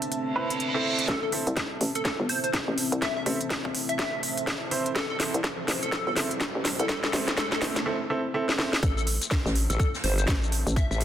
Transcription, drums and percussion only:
0.02 closed hi-hat medium
0.12 closed hi-hat medium
0.50 closed hi-hat medium
0.60 closed hi-hat medium
0.99 closed hi-hat medium
1.08 kick loud
1.08 snare soft
1.08 closed hi-hat medium
1.32 open hi-hat loud
1.47 closed hi-hat medium
1.57 kick loud
1.57 snare medium
1.57 closed hi-hat medium
1.81 open hi-hat loud
1.95 closed hi-hat medium
2.05 kick loud
2.05 snare medium
2.05 closed hi-hat medium
2.29 open hi-hat loud
2.44 closed hi-hat medium
2.53 kick loud
2.53 snare medium
2.53 closed hi-hat medium
2.78 open hi-hat loud
2.92 closed hi-hat medium
3.02 kick loud
3.02 snare medium
3.02 closed hi-hat medium
3.26 open hi-hat loud
3.41 closed hi-hat medium
3.50 kick loud
3.50 snare medium
3.50 closed hi-hat medium
3.65 kick medium
3.75 open hi-hat loud
3.89 closed hi-hat medium
3.99 kick loud
3.99 snare medium
3.99 closed hi-hat medium
4.23 open hi-hat loud
4.37 closed hi-hat medium
4.47 kick loud
4.47 snare medium
4.47 closed hi-hat medium
4.71 open hi-hat loud
4.86 closed hi-hat medium
4.96 kick loud
4.96 snare medium
4.96 closed hi-hat medium
5.20 snare medium
5.20 open hi-hat loud
5.34 closed hi-hat medium
5.44 kick loud
5.44 snare medium
5.44 closed hi-hat medium
5.68 snare medium
5.68 open hi-hat loud
5.83 closed hi-hat medium
5.92 kick loud
5.92 snare medium
5.92 closed hi-hat medium
6.16 snare medium
6.16 open hi-hat loud
6.31 closed hi-hat medium
6.41 kick loud
6.41 snare medium
6.41 closed hi-hat soft
6.65 snare medium
6.65 open hi-hat loud
6.79 closed hi-hat medium
6.89 kick loud
6.89 snare loud
6.89 closed hi-hat medium
7.04 snare medium
7.13 snare medium
7.13 open hi-hat loud
7.28 snare medium
7.28 closed hi-hat medium
7.38 kick loud
7.38 snare loud
7.38 closed hi-hat medium
7.52 kick medium
7.52 snare medium
7.62 snare loud
7.62 open hi-hat loud
7.76 snare medium
7.76 closed hi-hat medium
8.49 snare medium
8.59 snare medium
8.73 snare medium
8.83 kick loud
8.83 closed hi-hat medium
8.83 shaker medium
8.97 closed hi-hat soft
8.97 shaker soft
9.07 closed hi-hat medium
9.07 open hi-hat loud
9.22 closed hi-hat medium
9.22 shaker medium
9.31 kick loud
9.31 snare loud
9.31 closed hi-hat medium
9.31 shaker medium
9.46 snare medium
9.46 shaker soft
9.55 closed hi-hat medium
9.55 open hi-hat loud
9.70 closed hi-hat medium
9.70 shaker medium
9.79 kick loud
9.79 closed hi-hat medium
9.79 shaker medium
9.95 snare soft
9.95 shaker soft
10.04 snare soft
10.04 closed hi-hat medium
10.04 open hi-hat loud
10.18 closed hi-hat medium
10.18 shaker medium
10.27 kick loud
10.27 snare loud
10.27 closed hi-hat medium
10.27 shaker medium
10.43 shaker soft
10.52 closed hi-hat medium
10.52 open hi-hat loud
10.67 closed hi-hat medium
10.67 shaker medium
10.76 kick loud
10.76 closed hi-hat medium
10.76 shaker medium
10.92 shaker soft
11.00 closed hi-hat medium
11.00 open hi-hat loud

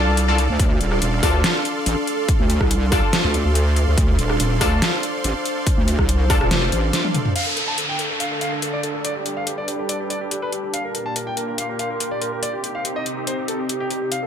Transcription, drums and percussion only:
0.17 closed hi-hat medium
0.38 closed hi-hat medium
0.60 kick loud
0.60 closed hi-hat medium
0.81 closed hi-hat medium
0.92 cross-stick medium
1.02 closed hi-hat medium
1.23 kick medium
1.23 cross-stick medium
1.23 open hi-hat medium
1.44 snare loud
1.44 closed hi-hat medium
1.65 closed hi-hat medium
1.86 closed hi-hat medium
2.07 closed hi-hat soft
2.29 kick loud
2.29 closed hi-hat medium
2.50 closed hi-hat medium
2.61 kick medium
2.61 cross-stick medium
2.71 closed hi-hat medium
2.92 kick loud
2.92 cross-stick medium
2.92 open hi-hat medium
3.13 snare loud
3.13 closed hi-hat medium
3.34 closed hi-hat medium
3.55 closed hi-hat medium
3.76 closed hi-hat medium
3.98 kick loud
3.98 closed hi-hat medium
4.19 closed hi-hat medium
4.30 cross-stick medium
4.40 closed hi-hat medium
4.61 kick medium
4.61 cross-stick medium
4.61 open hi-hat loud
4.82 snare loud
4.82 closed hi-hat medium
5.03 closed hi-hat medium
5.24 closed hi-hat medium
5.45 closed hi-hat medium
5.67 kick loud
5.67 closed hi-hat medium
5.88 closed hi-hat medium
5.99 kick medium
5.99 cross-stick medium
6.09 closed hi-hat medium
6.30 kick loud
6.30 cross-stick medium
6.30 open hi-hat loud
6.41 cross-stick medium
6.51 snare loud
6.51 closed hi-hat medium
6.72 closed hi-hat medium
6.93 snare medium
6.93 closed hi-hat medium
7.04 high tom medium
7.14 closed hi-hat medium
7.14 mid tom medium
7.25 mid tom medium
7.36 closed hi-hat medium
7.36 crash medium
7.57 closed hi-hat soft
7.78 closed hi-hat medium
7.99 closed hi-hat soft
8.20 closed hi-hat medium
8.41 closed hi-hat medium
8.62 closed hi-hat medium
8.83 closed hi-hat soft
9.05 closed hi-hat medium
9.26 closed hi-hat soft
9.47 closed hi-hat medium
9.68 closed hi-hat soft
9.89 closed hi-hat medium
10.10 closed hi-hat medium
10.31 closed hi-hat medium
10.52 closed hi-hat medium
10.74 closed hi-hat medium
10.95 closed hi-hat medium
11.16 closed hi-hat medium
11.37 closed hi-hat medium
11.58 closed hi-hat medium
11.79 closed hi-hat medium
12.00 closed hi-hat medium
12.22 closed hi-hat soft
12.43 closed hi-hat medium
12.64 closed hi-hat soft
12.85 closed hi-hat medium
13.06 closed hi-hat soft
13.27 closed hi-hat medium
13.48 closed hi-hat soft
13.69 closed hi-hat medium
13.90 closed hi-hat soft
14.12 closed hi-hat medium

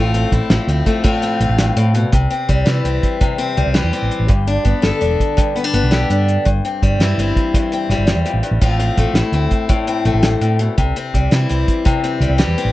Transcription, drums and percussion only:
0.14 closed hi-hat soft
0.32 kick medium
0.32 closed hi-hat soft
0.50 snare medium
0.50 closed hi-hat medium
0.69 closed hi-hat soft
0.87 kick medium
0.87 closed hi-hat soft
1.05 kick medium
1.05 closed hi-hat medium
1.22 closed hi-hat soft
1.41 closed hi-hat soft
1.59 snare medium
1.59 closed hi-hat medium
1.77 closed hi-hat soft
1.95 closed hi-hat soft
2.12 kick medium
2.12 closed hi-hat medium
2.31 closed hi-hat soft
2.49 kick medium
2.49 closed hi-hat soft
2.67 snare medium
2.67 closed hi-hat medium
2.85 closed hi-hat soft
3.03 kick medium
3.03 closed hi-hat soft
3.21 kick medium
3.21 closed hi-hat medium
3.39 closed hi-hat soft
3.57 closed hi-hat soft
3.75 snare medium
3.75 closed hi-hat medium
3.94 closed hi-hat soft
4.11 closed hi-hat soft
4.29 kick medium
4.29 closed hi-hat medium
4.47 closed hi-hat soft
4.65 kick medium
4.65 closed hi-hat soft
4.83 snare medium
4.83 closed hi-hat medium
5.02 closed hi-hat soft
5.20 kick medium
5.20 closed hi-hat soft
5.38 kick medium
5.38 closed hi-hat medium
5.57 closed hi-hat soft
5.74 closed hi-hat medium
5.92 snare medium
5.92 closed hi-hat medium
6.10 closed hi-hat soft
6.28 closed hi-hat soft
6.46 kick medium
6.46 closed hi-hat medium
6.65 closed hi-hat soft
6.83 kick medium
6.83 closed hi-hat soft
7.01 snare medium
7.01 closed hi-hat medium
7.19 closed hi-hat soft
7.36 kick medium
7.36 closed hi-hat soft
7.54 kick medium
7.54 closed hi-hat medium
7.72 closed hi-hat soft
7.90 snare soft
7.90 closed hi-hat soft
8.08 snare medium
8.08 closed hi-hat medium
8.26 closed hi-hat medium
8.44 closed hi-hat soft
8.62 kick medium
8.62 closed hi-hat medium
8.80 closed hi-hat soft
8.97 kick medium
8.97 closed hi-hat soft
9.15 snare medium
9.15 closed hi-hat medium
9.33 closed hi-hat soft
9.51 kick medium
9.51 closed hi-hat soft
9.69 kick medium
9.69 closed hi-hat medium
9.87 closed hi-hat soft
10.05 closed hi-hat soft
10.23 snare medium
10.23 closed hi-hat medium
10.42 closed hi-hat soft
10.60 closed hi-hat soft
10.78 kick medium
10.78 closed hi-hat medium
10.96 closed hi-hat soft
11.14 kick medium
11.14 closed hi-hat soft
11.32 snare medium
11.32 closed hi-hat medium
11.51 closed hi-hat soft
11.68 kick medium
11.68 closed hi-hat medium
11.86 kick medium
11.86 closed hi-hat medium
12.04 closed hi-hat medium
12.22 closed hi-hat soft
12.40 snare medium
12.40 closed hi-hat medium
12.58 closed hi-hat soft

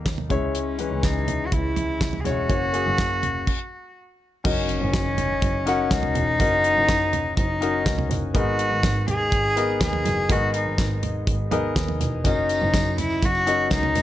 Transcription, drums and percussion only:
0.06 kick loud
0.06 snare loud
0.06 clap medium
0.06 closed hi-hat medium
0.18 floor tom medium
0.30 kick medium
0.30 closed hi-hat medium
0.30 floor tom soft
0.55 closed hi-hat medium
0.79 closed hi-hat medium
1.03 kick loud
1.03 snare medium
1.03 clap medium
1.03 closed hi-hat medium
1.28 closed hi-hat medium
1.28 floor tom medium
1.52 kick loud
1.52 closed hi-hat medium
1.76 closed hi-hat medium
1.76 floor tom medium
2.01 kick loud
2.01 snare loud
2.01 clap medium
2.01 closed hi-hat medium
2.13 floor tom medium
2.25 snare soft
2.25 closed hi-hat medium
2.25 floor tom soft
2.50 kick loud
2.50 closed hi-hat medium
2.74 closed hi-hat medium
2.98 kick loud
2.98 snare medium
2.98 clap medium
2.98 closed hi-hat medium
3.23 closed hi-hat medium
3.23 floor tom medium
3.47 kick loud
3.47 crash medium
4.45 kick loud
4.45 crash loud
4.69 closed hi-hat medium
4.94 kick loud
4.94 snare loud
4.94 clap medium
4.94 closed hi-hat medium
5.18 closed hi-hat medium
5.18 floor tom medium
5.42 kick loud
5.42 closed hi-hat medium
5.67 closed hi-hat medium
5.91 kick loud
5.91 snare loud
5.91 clap medium
5.91 closed hi-hat medium
6.03 floor tom medium
6.15 closed hi-hat medium
6.15 floor tom medium
6.40 kick loud
6.40 closed hi-hat medium
6.64 closed hi-hat medium
6.89 kick loud
6.89 snare loud
6.89 clap medium
6.89 closed hi-hat medium
7.13 closed hi-hat medium
7.13 floor tom medium
7.37 kick loud
7.37 closed hi-hat medium
7.62 closed hi-hat medium
7.86 kick loud
7.86 snare loud
7.86 clap medium
7.86 closed hi-hat medium
7.99 floor tom medium
8.11 snare soft
8.11 closed hi-hat medium
8.11 floor tom medium
8.35 kick loud
8.35 closed hi-hat medium
8.59 closed hi-hat medium
8.83 kick loud
8.83 snare loud
8.83 clap medium
8.83 closed hi-hat medium
9.08 closed hi-hat medium
9.08 floor tom medium
9.32 kick loud
9.32 closed hi-hat medium
9.57 closed hi-hat medium
9.81 kick loud
9.81 snare loud
9.81 clap medium
9.81 closed hi-hat medium
9.93 floor tom medium
10.05 snare soft
10.05 closed hi-hat medium
10.05 floor tom medium
10.30 kick loud
10.30 closed hi-hat medium
10.54 closed hi-hat medium
10.78 kick loud
10.78 snare loud
10.78 clap medium
10.78 closed hi-hat medium
11.03 closed hi-hat medium
11.03 floor tom medium
11.27 kick loud
11.27 closed hi-hat medium
11.51 closed hi-hat medium
11.51 floor tom medium
11.76 kick loud
11.76 snare loud
11.76 clap medium
11.76 closed hi-hat medium
11.88 floor tom medium
12.01 snare soft
12.01 closed hi-hat medium
12.01 floor tom medium
12.24 kick loud
12.24 closed hi-hat medium
12.24 tambourine medium
12.49 closed hi-hat medium
12.49 tambourine soft
12.61 tambourine soft
12.74 kick loud
12.74 snare loud
12.74 clap medium
12.74 closed hi-hat medium
12.74 tambourine medium
12.98 closed hi-hat medium
12.98 floor tom medium
12.98 tambourine soft
13.10 tambourine soft
13.22 kick loud
13.22 closed hi-hat medium
13.22 tambourine soft
13.35 tambourine soft
13.46 closed hi-hat medium
13.46 tambourine medium
13.71 kick loud
13.71 snare loud
13.71 clap medium
13.71 closed hi-hat medium
13.71 tambourine medium
13.83 floor tom medium
13.95 snare soft
13.95 closed hi-hat medium
13.95 floor tom medium
13.95 tambourine soft

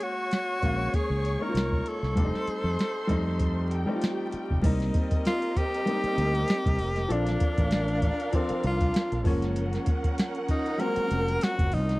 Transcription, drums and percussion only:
0.00 closed hi-hat medium
0.31 snare medium
0.31 closed hi-hat medium
0.62 kick medium
0.62 closed hi-hat medium
0.94 kick medium
0.94 closed hi-hat medium
1.25 closed hi-hat medium
1.55 snare loud
1.55 closed hi-hat medium
1.72 kick medium
1.86 closed hi-hat medium
2.04 snare soft
2.17 kick loud
2.17 closed hi-hat medium
2.35 snare soft
2.47 closed hi-hat medium
2.79 snare medium
2.79 closed hi-hat medium
3.09 kick medium
3.09 closed hi-hat medium
3.40 kick medium
3.40 closed hi-hat medium
3.71 closed hi-hat medium
4.01 snare loud
4.01 closed hi-hat medium
4.32 closed hi-hat medium
4.50 kick medium
4.64 kick loud
4.64 closed hi-hat medium
4.64 crash medium
4.80 snare soft
4.80 closed hi-hat medium
4.94 kick medium
4.94 closed hi-hat medium
5.11 kick medium
5.11 closed hi-hat medium
5.25 snare loud
5.25 closed hi-hat medium
5.42 closed hi-hat medium
5.56 kick medium
5.56 closed hi-hat medium
5.74 closed hi-hat medium
5.87 closed hi-hat medium
6.04 closed hi-hat medium
6.18 closed hi-hat medium
6.35 closed hi-hat soft
6.48 snare loud
6.48 closed hi-hat medium
6.66 kick medium
6.66 closed hi-hat medium
6.79 open hi-hat medium
6.96 snare soft
6.96 closed hi-hat soft
7.10 closed hi-hat medium
7.26 snare soft
7.26 closed hi-hat medium
7.40 kick medium
7.40 closed hi-hat medium
7.58 kick medium
7.58 closed hi-hat medium
7.71 snare loud
7.71 closed hi-hat medium
7.88 closed hi-hat medium
8.02 kick medium
8.02 closed hi-hat medium
8.20 closed hi-hat soft
8.33 kick medium
8.33 closed hi-hat medium
8.49 closed hi-hat medium
8.64 closed hi-hat medium
8.81 kick medium
8.81 closed hi-hat soft
8.94 snare loud
8.94 closed hi-hat medium
9.12 closed hi-hat medium
9.25 kick loud
9.25 open hi-hat medium
9.42 snare soft
9.42 closed hi-hat soft
9.56 closed hi-hat medium
9.73 snare soft
9.73 closed hi-hat medium
9.86 kick medium
9.86 closed hi-hat medium
10.04 kick medium
10.04 closed hi-hat medium
10.18 snare loud
10.18 closed hi-hat medium
10.35 closed hi-hat medium
10.49 kick medium
10.49 closed hi-hat medium
10.66 closed hi-hat medium
10.80 closed hi-hat medium
10.96 closed hi-hat medium
11.11 closed hi-hat medium
11.28 closed hi-hat soft
11.41 snare loud
11.41 closed hi-hat medium
11.58 kick medium
11.58 closed hi-hat medium
11.72 open hi-hat medium
11.89 snare soft
11.89 closed hi-hat soft

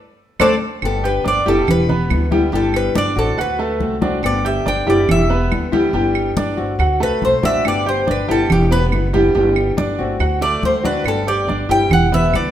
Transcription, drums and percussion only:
0.40 cowbell loud
0.40 high conga medium
0.40 claves medium
0.82 high conga soft
0.82 claves medium
1.04 high conga soft
1.26 high conga medium
1.47 high conga soft
1.68 high conga soft
1.68 low conga medium
1.68 claves medium
1.89 high conga soft
1.89 low conga medium
2.10 high conga medium
2.10 claves medium
2.32 high conga medium
2.53 high conga soft
2.74 high conga soft
2.74 claves medium
2.95 high conga medium
3.17 high conga soft
3.38 high conga soft
3.38 claves medium
3.59 high conga soft
3.80 high conga medium
4.02 high conga medium
4.24 high conga soft
4.24 claves medium
4.45 high conga soft
4.67 high conga medium
4.88 high conga soft
5.09 high conga soft
5.09 low conga medium
5.09 claves medium
5.30 high conga soft
5.52 high conga medium
5.52 claves medium
5.73 high conga medium
5.94 high conga soft
6.15 high conga soft
6.15 claves medium
6.37 high conga loud
6.58 high conga soft
6.79 high conga soft
6.79 claves medium
7.01 high conga soft
7.22 high conga medium
7.43 high conga medium
7.65 high conga soft
7.65 claves medium
7.87 high conga soft
8.08 high conga medium
8.29 high conga soft
8.50 high conga soft
8.50 low conga medium
8.50 claves medium
8.72 high conga soft
8.92 high conga medium
8.92 claves medium
9.14 high conga medium
9.35 high conga soft
9.56 high conga soft
9.56 claves medium
9.78 high conga loud
9.99 high conga soft
10.20 high conga soft
10.20 claves medium
10.42 high conga soft
10.63 high conga medium
10.85 high conga medium
11.06 high conga soft
11.06 claves medium
11.27 high conga soft
11.49 high conga medium
11.70 high conga soft
11.91 high conga soft
11.91 low conga medium
11.91 claves medium
12.13 high conga soft
12.13 low conga medium
12.34 high conga medium
12.34 claves medium

